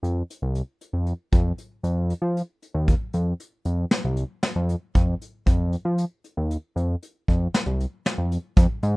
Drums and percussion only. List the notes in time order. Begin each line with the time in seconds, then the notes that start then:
0.04 closed hi-hat
0.30 closed hi-hat
0.55 closed hi-hat
0.81 closed hi-hat
1.07 closed hi-hat
1.32 kick, closed hi-hat
1.58 closed hi-hat
1.84 closed hi-hat
2.10 closed hi-hat
2.37 closed hi-hat
2.62 closed hi-hat
2.88 kick, closed hi-hat
3.13 closed hi-hat
3.40 closed hi-hat
3.65 closed hi-hat
3.91 snare, closed hi-hat
4.17 closed hi-hat
4.43 snare, closed hi-hat
4.69 closed hi-hat
4.95 kick, closed hi-hat
5.21 closed hi-hat
5.47 kick, closed hi-hat
5.72 closed hi-hat
5.98 closed hi-hat
6.24 closed hi-hat
6.51 closed hi-hat
6.77 closed hi-hat
7.03 closed hi-hat
7.28 kick, closed hi-hat
7.54 snare, closed hi-hat
7.80 closed hi-hat
8.06 snare, closed hi-hat
8.32 closed hi-hat
8.57 kick, closed hi-hat
8.83 closed hi-hat